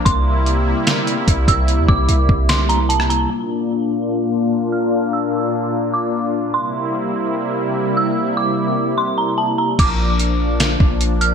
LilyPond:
<<
  \new Staff \with { instrumentName = "Synth bell" } { \time 4/4 \key bes \lydian \tempo 4 = 148 c'''2.~ c'''8 e'''8 | r8 d'''4. c'''8 bes''8 a''8 bes''8 | d'''2.~ d'''8 f'''8 | r8 e'''2 d'''4. |
c'''2.~ c'''8 e'''8 | r8 d'''4. c'''8 bes''8 a''8 bes''8 | d'''2.~ d'''8 f'''8 | }
  \new Staff \with { instrumentName = "Analog synth pad" } { \time 4/4 \key bes \lydian <c g bes e'>1~ | <c g bes e'>1 | <bes, bes d' f'>1~ | <bes, bes d' f'>1 |
<c g bes e'>1~ | <c g bes e'>1 | <f bes d'>1 | }
  \new Staff \with { instrumentName = "808-style bass" } { \clef bass \time 4/4 \key bes \lydian c,4.~ c,16 r4 r16 c,8 c,8~ | c,16 e,16 c,8 c,8 c,2~ c,8 | r1 | r1 |
r1 | r1 | bes,,2~ bes,,8 bes,,4. | }
  \new DrumStaff \with { instrumentName = "Drums" } \drummode { \time 4/4 <hh bd>4 hh4 <hh sn>8 hh8 <hh bd>8 <hh bd>8 | hh8 bd8 hh8 bd8 <hh sn>8 hh8 hh16 ss16 hh8 | r4 r4 r4 r4 | r4 r4 r4 r4 |
r4 r4 r4 r4 | r4 r4 r4 r4 | <cymc hh bd>4 hh4 <hh sn>8 bd8 hh8 hh8 | }
>>